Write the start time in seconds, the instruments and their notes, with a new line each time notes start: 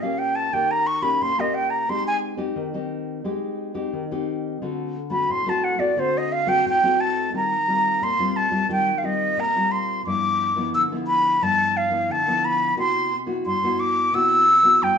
Already playing: nylon-string guitar A#2
0.03 nylon-string guitar A#3 C#4 G4, flute F5
0.19 flute G5
0.36 flute A5
0.53 nylon-string guitar D#3 A#3 C#4 G4, flute G5
0.71 flute A#5
0.87 flute C#6
1.02 nylon-string guitar A#3 C#4 G4, flute B5
1.21 nylon-string guitar A#2, flute C6
1.38 nylon-string guitar A#3 C#4 G4, flute D#5
1.54 flute G5
1.70 flute A#5
1.89 nylon-string guitar G#3 C4 D#4 G4, flute C6
2.07 flute G#5
2.37 nylon-string guitar C4 D#4 G4
2.56 nylon-string guitar D#3
2.74 nylon-string guitar C4 D#4 G4
3.24 nylon-string guitar G#3 C4 D#4 G4
3.74 nylon-string guitar C4 D#4 G4
3.93 nylon-string guitar D#3
4.11 nylon-string guitar C4 D#4 G4
4.62 nylon-string guitar D3 A3 C4 F#4
5.10 nylon-string guitar A3 C4 F#4, flute B5
5.29 nylon-string guitar A2, flute C6
5.46 nylon-string guitar A3 C4 F#4, flute A5
5.64 flute F#5
5.78 nylon-string guitar A3 C4 F#4, flute D5
5.97 nylon-string guitar D3 A3 C4 F#4, flute C5
6.18 flute D#5
6.32 flute F5
6.47 nylon-string guitar A3 C4 F#4, flute G5
6.65 nylon-string guitar A2, flute G5
6.83 nylon-string guitar A3 C4 F#4
7.01 flute A5
7.33 nylon-string guitar D#3 G3 C4 F4, flute A#5
7.68 nylon-string guitar G3 C4 F4
8.02 nylon-string guitar A#2, flute C6
8.19 nylon-string guitar G3 C4 F4
8.36 flute A5
8.51 nylon-string guitar G3 C4 F4
8.69 nylon-string guitar D#3 G3 C4 F4, flute G5
8.98 flute F5
9.03 nylon-string guitar G3 C4 F4, flute D#5
9.37 nylon-string guitar A#2, flute A#5
9.56 nylon-string guitar G3 C4 F4
9.71 flute C6
10.06 nylon-string guitar G2 F3 B3 E4, flute D6
10.56 nylon-string guitar F3 B3 E4
10.74 nylon-string guitar D3, flute E6
10.92 nylon-string guitar F3 B3 E4
11.07 flute B5
11.42 nylon-string guitar G2 F3 B3 E4, flute A5
11.77 flute F5
11.91 nylon-string guitar F3 B3 E4
12.09 nylon-string guitar D3, flute A5
12.27 nylon-string guitar F3 B3 E4
12.45 flute B5
12.77 nylon-string guitar C3 B3 E4 F#4, flute C6
13.26 nylon-string guitar B3 E4 F#4
13.45 nylon-string guitar G2, flute C6
13.63 nylon-string guitar B3 E4 F#4
13.80 flute D6
14.13 nylon-string guitar C3 B3 E4 F#4, flute E6
14.63 nylon-string guitar B3 E4 F#4
14.82 nylon-string guitar G2, flute G5